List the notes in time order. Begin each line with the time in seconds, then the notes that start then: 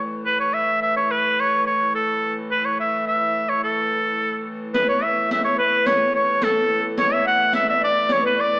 Already playing: A2 E3
0.25 A2 E3 B4
0.40 C#5
0.54 E5
0.82 E5
0.97 C#5
1.11 B4
1.40 C#5
1.67 C#5
1.95 A4
2.51 B4
2.65 C#5
2.80 E5
3.08 E5
3.49 C#5
3.63 A4
4.74 A2 E3 B4, riq
4.87 C#5
5.01 E5
5.30 E5, riq
5.44 C#5
5.58 B4
5.86 C#5, riq
6.14 C#5
6.42 A4, riq
6.98 C#5, riq
7.13 E5
7.25 F#5
7.53 E5, riq
7.67 D5 E5
7.75 E5
7.81 D5
8.09 C#5, riq
8.22 B4
8.37 D5